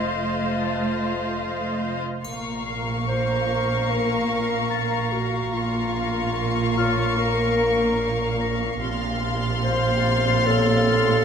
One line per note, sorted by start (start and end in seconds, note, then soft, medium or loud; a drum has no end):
0.00 2.01 F1 soft
0.00 1.80 A3 soft
0.00 2.00 F4 soft
0.00 2.00 C5 soft
0.00 2.01 D#5 soft
0.00 2.01 F5 soft
0.59 2.20 A5 soft
0.59 2.21 A6 soft
2.23 5.49 A#1 soft
2.23 5.49 A#2 soft
2.23 5.48 A#3 soft
2.23 5.49 F5 soft
2.23 8.37 A#5 soft
2.23 5.50 C#6 soft
2.23 triangle soft
2.66 5.09 C7 soft
3.07 3.92 C5 medium
3.07 8.37 A#6 soft
3.90 5.14 A#4 soft
4.69 7.13 A#5 soft
4.69 7.13 A6 soft
5.12 5.54 F#4 soft
5.53 8.78 A#1 soft
5.53 8.78 A#2 soft
5.53 8.78 A#3 soft
5.53 6.76 F4 soft
5.53 8.78 F5 soft
5.53 8.79 C#6 soft
6.77 7.17 F4 medium
6.77 9.20 C#5 soft
6.77 9.20 F6 soft
7.18 8.79 A#4 medium
8.41 10.83 A#6 soft
8.81 11.25 A#1 medium
8.81 11.25 A#2 medium
8.81 11.25 C3 soft
8.81 11.25 F5 soft
8.81 11.25 C6 soft
8.81 11.25 F6 soft
8.81 11.25 A6 soft
9.63 10.48 C5 medium
10.46 11.25 A4 medium
10.46 11.25 C#5 medium